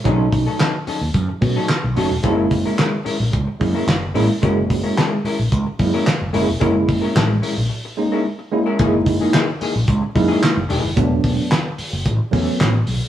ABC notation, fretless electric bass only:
X:1
M:4/4
L:1/16
Q:1/4=110
K:F#mix
V:1 name="Fretless electric bass" clef=bass
B,,,2 B,,, z4 D,, F,, z B,, z2 B,,, F,,, E,,, | F,,,2 F,,, z4 A,,, C,, z F,, z F,,,2 =A,,, z | F,,,2 F,,, z4 A,,, C,, z F,, z2 F,,, F,,, E,,, | F,,,2 F,,, z =A,,,2 z ^A,,, z8 |
F,,,2 F,,, z4 A,,, C,, z F,, z2 F,,, E,,, F,,, | E,,,2 E,,, z4 F,,, =A,,, z E,, z A,,,2 B,,, z |]